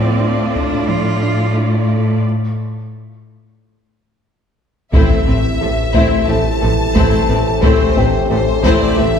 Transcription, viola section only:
0, 0, Header, 1, 2, 480
1, 0, Start_track
1, 0, Key_signature, 0, "minor"
1, 0, Tempo, 674157
1, 1591, Time_signature, 4, 2, 24, 8
1, 6545, End_track
2, 0, Start_track
2, 0, Title_t, "Viola section"
2, 0, Program_c, 0, 48
2, 0, Note_on_c, 0, 65, 53
2, 0, Note_on_c, 0, 74, 54
2, 1564, Note_off_c, 0, 74, 0
2, 1592, Note_off_c, 0, 65, 0
2, 3511, Note_on_c, 0, 60, 55
2, 3512, Note_on_c, 0, 57, 53
2, 3734, Note_off_c, 0, 60, 0
2, 3735, Note_off_c, 0, 57, 0
2, 3753, Note_on_c, 0, 57, 42
2, 3754, Note_on_c, 0, 60, 42
2, 3810, Note_off_c, 0, 57, 0
2, 3811, Note_off_c, 0, 60, 0
2, 3998, Note_on_c, 0, 57, 41
2, 3999, Note_on_c, 0, 48, 36
2, 4055, Note_off_c, 0, 57, 0
2, 4056, Note_off_c, 0, 48, 0
2, 4235, Note_on_c, 0, 57, 47
2, 4236, Note_on_c, 0, 60, 57
2, 4456, Note_off_c, 0, 57, 0
2, 4457, Note_off_c, 0, 60, 0
2, 4475, Note_on_c, 0, 60, 43
2, 4478, Note_on_c, 0, 57, 52
2, 4532, Note_off_c, 0, 60, 0
2, 4535, Note_off_c, 0, 57, 0
2, 4715, Note_on_c, 0, 57, 53
2, 4716, Note_on_c, 0, 48, 49
2, 4772, Note_off_c, 0, 48, 0
2, 4772, Note_off_c, 0, 57, 0
2, 4957, Note_on_c, 0, 57, 60
2, 4958, Note_on_c, 0, 60, 54
2, 5177, Note_off_c, 0, 57, 0
2, 5178, Note_off_c, 0, 60, 0
2, 5193, Note_on_c, 0, 57, 54
2, 5196, Note_on_c, 0, 60, 53
2, 5250, Note_off_c, 0, 57, 0
2, 5253, Note_off_c, 0, 60, 0
2, 5430, Note_on_c, 0, 57, 76
2, 5431, Note_on_c, 0, 60, 70
2, 5653, Note_off_c, 0, 57, 0
2, 5654, Note_off_c, 0, 60, 0
2, 5679, Note_on_c, 0, 57, 47
2, 5680, Note_on_c, 0, 60, 48
2, 5736, Note_off_c, 0, 57, 0
2, 5737, Note_off_c, 0, 60, 0
2, 5919, Note_on_c, 0, 57, 45
2, 5920, Note_on_c, 0, 48, 49
2, 5976, Note_off_c, 0, 57, 0
2, 5977, Note_off_c, 0, 48, 0
2, 6155, Note_on_c, 0, 57, 68
2, 6155, Note_on_c, 0, 60, 71
2, 6376, Note_off_c, 0, 57, 0
2, 6376, Note_off_c, 0, 60, 0
2, 6394, Note_on_c, 0, 57, 57
2, 6396, Note_on_c, 0, 60, 52
2, 6451, Note_off_c, 0, 57, 0
2, 6453, Note_off_c, 0, 60, 0
2, 6545, End_track
0, 0, End_of_file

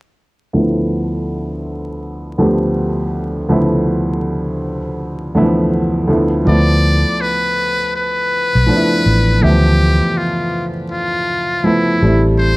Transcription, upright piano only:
0, 0, Header, 1, 2, 480
1, 0, Start_track
1, 0, Tempo, 740741
1, 351, Time_signature, 4, 2, 24, 8
1, 8144, End_track
2, 0, Start_track
2, 0, Title_t, "Upright piano"
2, 0, Program_c, 0, 0
2, 344, Note_on_c, 0, 38, 67
2, 349, Note_on_c, 0, 53, 69
2, 353, Note_on_c, 0, 57, 68
2, 356, Note_on_c, 0, 59, 73
2, 362, Note_on_c, 0, 64, 84
2, 468, Control_c, 0, 64, 127
2, 1177, Note_off_c, 0, 38, 0
2, 1179, Note_off_c, 0, 53, 0
2, 1181, Note_off_c, 0, 57, 0
2, 1183, Note_off_c, 0, 59, 0
2, 1185, Note_off_c, 0, 64, 0
2, 1542, Note_on_c, 0, 38, 76
2, 1545, Note_on_c, 0, 53, 70
2, 1550, Note_on_c, 0, 57, 68
2, 1554, Note_on_c, 0, 59, 69
2, 1562, Note_on_c, 0, 67, 84
2, 2179, Note_off_c, 0, 38, 0
2, 2181, Note_off_c, 0, 53, 0
2, 2183, Note_off_c, 0, 57, 0
2, 2185, Note_off_c, 0, 59, 0
2, 2189, Note_off_c, 0, 67, 0
2, 2259, Note_on_c, 0, 38, 77
2, 2264, Note_on_c, 0, 53, 70
2, 2268, Note_on_c, 0, 57, 64
2, 2273, Note_on_c, 0, 59, 68
2, 2278, Note_on_c, 0, 64, 83
2, 3094, Note_off_c, 0, 38, 0
2, 3097, Note_off_c, 0, 53, 0
2, 3099, Note_off_c, 0, 57, 0
2, 3101, Note_off_c, 0, 59, 0
2, 3104, Note_off_c, 0, 64, 0
2, 3464, Note_on_c, 0, 38, 78
2, 3465, Note_on_c, 0, 52, 53
2, 3473, Note_on_c, 0, 57, 69
2, 3474, Note_on_c, 0, 59, 71
2, 3480, Note_on_c, 0, 64, 90
2, 3510, Note_on_c, 0, 53, 72
2, 3520, Note_off_c, 0, 52, 0
2, 3925, Note_off_c, 0, 38, 0
2, 3931, Note_off_c, 0, 53, 0
2, 3934, Note_off_c, 0, 57, 0
2, 3934, Note_on_c, 0, 38, 80
2, 3940, Note_on_c, 0, 53, 73
2, 3942, Note_off_c, 0, 59, 0
2, 3944, Note_on_c, 0, 57, 63
2, 3946, Note_off_c, 0, 64, 0
2, 3952, Note_on_c, 0, 59, 73
2, 3956, Note_on_c, 0, 64, 79
2, 3958, Control_c, 0, 64, 0
2, 4049, Control_c, 0, 64, 127
2, 4153, Note_off_c, 0, 38, 0
2, 4156, Note_off_c, 0, 53, 0
2, 4158, Note_off_c, 0, 57, 0
2, 4162, Note_off_c, 0, 59, 0
2, 4164, Note_off_c, 0, 64, 0
2, 4181, Note_on_c, 0, 53, 74
2, 4189, Note_on_c, 0, 57, 65
2, 4195, Note_on_c, 0, 59, 68
2, 4198, Control_c, 0, 64, 0
2, 4199, Note_on_c, 0, 64, 75
2, 4307, Control_c, 0, 64, 127
2, 5015, Note_off_c, 0, 53, 0
2, 5019, Note_off_c, 0, 57, 0
2, 5022, Note_off_c, 0, 59, 0
2, 5024, Note_off_c, 0, 64, 0
2, 5615, Note_on_c, 0, 53, 70
2, 5622, Note_on_c, 0, 57, 64
2, 5630, Note_on_c, 0, 59, 60
2, 5632, Note_on_c, 0, 62, 59
2, 5679, Note_on_c, 0, 64, 80
2, 5683, Note_off_c, 0, 62, 0
2, 6045, Note_off_c, 0, 53, 0
2, 6048, Note_off_c, 0, 57, 0
2, 6052, Note_off_c, 0, 59, 0
2, 6076, Note_off_c, 0, 64, 0
2, 6097, Note_on_c, 0, 52, 57
2, 6103, Note_on_c, 0, 57, 56
2, 6107, Note_on_c, 0, 59, 61
2, 6116, Note_on_c, 0, 76, 73
2, 6140, Note_on_c, 0, 53, 68
2, 6156, Note_off_c, 0, 52, 0
2, 6936, Note_off_c, 0, 57, 0
2, 6938, Note_off_c, 0, 59, 0
2, 6943, Note_off_c, 0, 76, 0
2, 6955, Note_off_c, 0, 53, 0
2, 7540, Note_on_c, 0, 53, 70
2, 7551, Note_on_c, 0, 57, 62
2, 7554, Note_on_c, 0, 59, 60
2, 7561, Note_on_c, 0, 64, 76
2, 7786, Note_off_c, 0, 53, 0
2, 7788, Note_off_c, 0, 57, 0
2, 7792, Note_off_c, 0, 59, 0
2, 7793, Note_on_c, 0, 55, 79
2, 7796, Note_off_c, 0, 64, 0
2, 7798, Note_on_c, 0, 57, 66
2, 7799, Control_c, 0, 64, 0
2, 7805, Note_on_c, 0, 60, 64
2, 7812, Note_on_c, 0, 64, 78
2, 7924, Control_c, 0, 64, 127
2, 8144, Note_off_c, 0, 55, 0
2, 8144, Note_off_c, 0, 57, 0
2, 8144, Note_off_c, 0, 60, 0
2, 8144, Note_off_c, 0, 64, 0
2, 8144, End_track
0, 0, End_of_file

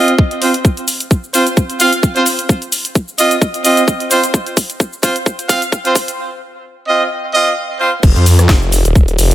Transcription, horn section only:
0, 0, Header, 1, 2, 480
1, 0, Start_track
1, 0, Tempo, 461538
1, 673, Time_signature, 4, 2, 24, 8
1, 9720, End_track
2, 0, Start_track
2, 0, Title_t, "Horn section"
2, 0, Program_c, 0, 61
2, 0, Note_on_c, 0, 60, 98
2, 0, Note_on_c, 0, 65, 91
2, 0, Note_on_c, 0, 75, 111
2, 131, Note_off_c, 0, 60, 0
2, 131, Note_off_c, 0, 65, 0
2, 131, Note_off_c, 0, 75, 0
2, 431, Note_on_c, 0, 60, 87
2, 431, Note_on_c, 0, 72, 93
2, 432, Note_on_c, 0, 65, 78
2, 550, Note_off_c, 0, 60, 0
2, 550, Note_off_c, 0, 65, 0
2, 550, Note_off_c, 0, 72, 0
2, 1392, Note_on_c, 0, 60, 92
2, 1392, Note_on_c, 0, 65, 83
2, 1392, Note_on_c, 0, 72, 98
2, 1510, Note_off_c, 0, 72, 0
2, 1511, Note_off_c, 0, 60, 0
2, 1511, Note_off_c, 0, 65, 0
2, 1872, Note_on_c, 0, 60, 103
2, 1872, Note_on_c, 0, 65, 94
2, 1872, Note_on_c, 0, 77, 109
2, 1991, Note_off_c, 0, 60, 0
2, 1991, Note_off_c, 0, 65, 0
2, 1991, Note_off_c, 0, 77, 0
2, 2244, Note_on_c, 0, 60, 93
2, 2244, Note_on_c, 0, 65, 84
2, 2245, Note_on_c, 0, 72, 102
2, 2341, Note_off_c, 0, 60, 0
2, 2342, Note_off_c, 0, 65, 0
2, 2342, Note_off_c, 0, 72, 0
2, 3312, Note_on_c, 0, 60, 86
2, 3312, Note_on_c, 0, 65, 82
2, 3312, Note_on_c, 0, 75, 98
2, 3491, Note_off_c, 0, 60, 0
2, 3491, Note_off_c, 0, 65, 0
2, 3491, Note_off_c, 0, 75, 0
2, 3792, Note_on_c, 0, 65, 94
2, 3793, Note_on_c, 0, 60, 101
2, 3793, Note_on_c, 0, 75, 111
2, 3972, Note_off_c, 0, 60, 0
2, 3972, Note_off_c, 0, 65, 0
2, 3972, Note_off_c, 0, 75, 0
2, 4272, Note_on_c, 0, 60, 87
2, 4273, Note_on_c, 0, 65, 82
2, 4273, Note_on_c, 0, 72, 95
2, 4391, Note_off_c, 0, 60, 0
2, 4391, Note_off_c, 0, 65, 0
2, 4391, Note_off_c, 0, 72, 0
2, 5232, Note_on_c, 0, 65, 87
2, 5232, Note_on_c, 0, 72, 103
2, 5233, Note_on_c, 0, 60, 91
2, 5351, Note_off_c, 0, 60, 0
2, 5351, Note_off_c, 0, 65, 0
2, 5351, Note_off_c, 0, 72, 0
2, 5712, Note_on_c, 0, 65, 93
2, 5713, Note_on_c, 0, 60, 103
2, 5713, Note_on_c, 0, 77, 116
2, 5831, Note_off_c, 0, 60, 0
2, 5831, Note_off_c, 0, 65, 0
2, 5831, Note_off_c, 0, 77, 0
2, 6084, Note_on_c, 0, 60, 95
2, 6084, Note_on_c, 0, 72, 106
2, 6085, Note_on_c, 0, 65, 86
2, 6181, Note_off_c, 0, 60, 0
2, 6181, Note_off_c, 0, 72, 0
2, 6182, Note_off_c, 0, 65, 0
2, 7153, Note_on_c, 0, 60, 90
2, 7153, Note_on_c, 0, 65, 82
2, 7153, Note_on_c, 0, 75, 99
2, 7332, Note_off_c, 0, 60, 0
2, 7332, Note_off_c, 0, 65, 0
2, 7332, Note_off_c, 0, 75, 0
2, 7633, Note_on_c, 0, 60, 103
2, 7633, Note_on_c, 0, 65, 97
2, 7633, Note_on_c, 0, 75, 116
2, 7812, Note_off_c, 0, 60, 0
2, 7812, Note_off_c, 0, 65, 0
2, 7812, Note_off_c, 0, 75, 0
2, 8112, Note_on_c, 0, 60, 90
2, 8112, Note_on_c, 0, 72, 98
2, 8113, Note_on_c, 0, 65, 81
2, 8231, Note_off_c, 0, 60, 0
2, 8231, Note_off_c, 0, 65, 0
2, 8231, Note_off_c, 0, 72, 0
2, 9720, End_track
0, 0, End_of_file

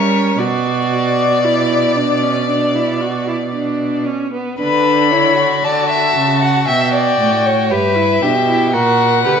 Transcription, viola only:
0, 0, Header, 1, 2, 480
1, 0, Start_track
1, 0, Key_signature, 2, "minor"
1, 0, Tempo, 1048951
1, 178, Time_signature, 4, 2, 24, 8
1, 2579, Tempo, 1030928
1, 4332, End_track
2, 0, Start_track
2, 0, Title_t, "Viola"
2, 0, Program_c, 0, 41
2, 0, Note_on_c, 0, 61, 65
2, 179, Note_on_c, 0, 66, 67
2, 186, Note_off_c, 0, 61, 0
2, 661, Note_on_c, 0, 64, 58
2, 667, Note_off_c, 0, 66, 0
2, 900, Note_on_c, 0, 62, 55
2, 907, Note_off_c, 0, 64, 0
2, 1018, Note_on_c, 0, 61, 56
2, 1025, Note_off_c, 0, 62, 0
2, 1135, Note_off_c, 0, 61, 0
2, 1138, Note_on_c, 0, 62, 60
2, 1257, Note_on_c, 0, 64, 53
2, 1264, Note_off_c, 0, 62, 0
2, 1377, Note_on_c, 0, 66, 55
2, 1384, Note_off_c, 0, 64, 0
2, 1497, Note_off_c, 0, 66, 0
2, 1499, Note_on_c, 0, 64, 50
2, 1536, Note_off_c, 0, 64, 0
2, 1618, Note_on_c, 0, 62, 57
2, 1860, Note_on_c, 0, 61, 58
2, 1867, Note_off_c, 0, 62, 0
2, 1980, Note_off_c, 0, 61, 0
2, 1983, Note_on_c, 0, 59, 57
2, 2100, Note_off_c, 0, 59, 0
2, 2103, Note_on_c, 0, 62, 70
2, 2344, Note_on_c, 0, 64, 65
2, 2351, Note_off_c, 0, 62, 0
2, 2462, Note_off_c, 0, 64, 0
2, 2465, Note_on_c, 0, 66, 69
2, 3545, Note_on_c, 0, 67, 65
2, 3552, Note_off_c, 0, 66, 0
2, 3663, Note_on_c, 0, 64, 59
2, 3670, Note_off_c, 0, 67, 0
2, 3783, Note_off_c, 0, 64, 0
2, 3786, Note_on_c, 0, 62, 59
2, 3823, Note_off_c, 0, 62, 0
2, 3903, Note_on_c, 0, 64, 64
2, 4019, Note_off_c, 0, 64, 0
2, 4022, Note_on_c, 0, 66, 67
2, 4256, Note_off_c, 0, 66, 0
2, 4263, Note_on_c, 0, 67, 60
2, 4300, Note_off_c, 0, 67, 0
2, 4332, End_track
0, 0, End_of_file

